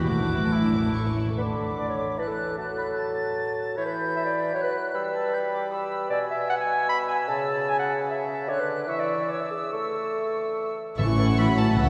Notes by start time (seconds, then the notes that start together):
Already playing: E3
0.08 A1 A2 A3 F#4 D6
0.21 D4
0.32 E4
0.44 A4
0.53 E4
0.65 D4
0.76 A3
0.86 D4
0.95 A3 C#6
1.07 C#4
1.17 E4
1.28 A4
1.38 D3 B4 B5 D6
1.48 A4
1.79 D5
1.89 C#5
2.19 E3 B4 A5 F#6
2.28 A4
2.58 F#3 A4 A5 F#6
2.78 B5
2.97 A5 A6
3.77 E3 C#5 B5 G6
3.85 B4
4.16 E5
4.25 D5
4.54 F#3 C#5 F#6
4.63 B4
4.93 G3 B4 B5 E6
5.14 A5
5.32 B5 G6
5.51 D6
5.71 B5 E6
6.10 B2 D5 G#5 E6
6.31 E5
6.50 F#5
6.60 G#5
6.89 B5
7.09 G#5
7.28 C#3 A5
7.69 G#5
7.79 F#5
8.10 E5
8.49 D3 C#5 D6 F#6
8.60 B4
8.88 E3 E5 C#6 E6
9.00 D5
9.29 C#5 D6
9.42 B4
9.51 G#4
9.73 A3 A4 C#6
10.98 A1 A2 E3 C#4 E4 A4 E5 C#6
11.19 E3 E4 A4 F#5 C#6
11.38 E3 F#3 E4 A4 B5 C#6
11.57 E3 E4 A4 A5 C#6
11.77 C#2 C#3 E3 C#4 E4 A4 E5 F#5 C#6